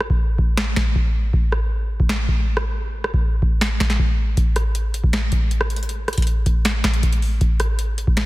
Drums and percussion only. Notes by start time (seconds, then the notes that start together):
0.01 cross-stick
0.10 kick
0.38 kick
0.57 finger snap, snare
0.76 finger snap, kick, snare
0.95 kick
1.33 kick
1.52 cross-stick
2.00 kick
2.09 finger snap, snare
2.28 kick
2.57 cross-stick
3.04 cross-stick
3.14 kick
3.42 kick
3.61 finger snap, snare
3.80 finger snap, kick, snare
3.90 snare
3.99 kick
4.37 kick, closed hi-hat
4.56 cross-stick, closed hi-hat
4.75 closed hi-hat
4.94 closed hi-hat
5.04 kick
5.13 finger snap, snare, closed hi-hat
5.32 kick, closed hi-hat
5.51 closed hi-hat
5.61 cross-stick
5.70 closed hi-hat
5.76 closed hi-hat
5.83 closed hi-hat
5.89 closed hi-hat
6.08 cross-stick, closed hi-hat
6.13 closed hi-hat
6.18 kick, closed hi-hat
6.22 closed hi-hat
6.27 closed hi-hat
6.46 kick, closed hi-hat
6.65 finger snap, snare, closed hi-hat
6.84 finger snap, kick, snare, closed hi-hat
6.94 closed hi-hat
7.03 kick, closed hi-hat
7.13 closed hi-hat
7.22 open hi-hat
7.41 kick, closed hi-hat
7.60 cross-stick, closed hi-hat
7.79 closed hi-hat
7.98 closed hi-hat
8.07 kick
8.17 finger snap, snare, closed hi-hat